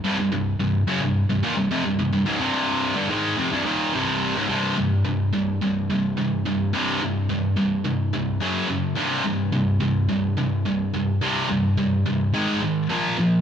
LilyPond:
\new Staff \with { instrumentName = "Distorted electric guitar" } { \clef bass \time 4/4 \key c \phrygian \tempo 4 = 107 <c, g,>16 <c, g,>16 <c, g,>8 <c, g,>8 <fis, des>16 <c, g,>8 <c, g,>16 <ees, bes,>16 <c, g,>16 <f, c>16 <c, g,>16 <c, g,>16 <c, g,>16 | <des, aes,>16 <c, g, c>4 <g, d>16 <aes, ees aes>8 <f, c>16 <c, g,>16 <ees, bes, ees>8 <c, g, c>8. <des, aes,>16 | \key c \minor <c, g, c>8 <c, g,>8 <c, g,>8 <c, g,>8 <c, g,>8 <c, g,>8 <c, g,>8 <c, g,>8 | <c, g, c>8 <c, g,>8 <c, g,>8 <c, g,>8 <c, g,>8 <c, g,>8 <fis, cis fis>8 <fis, cis>8 |
<c, g, c>8 <c, g,>8 <c, g,>8 <c, g,>8 <c, g,>8 <c, g,>8 <c, g,>8 <c, g,>8 | <c, g, c>8 <c, g,>8 <c, g,>8 <c, g,>8 <aes, ees aes>8 <aes, ees>8 <bes, f bes>8 <bes, f>8 | }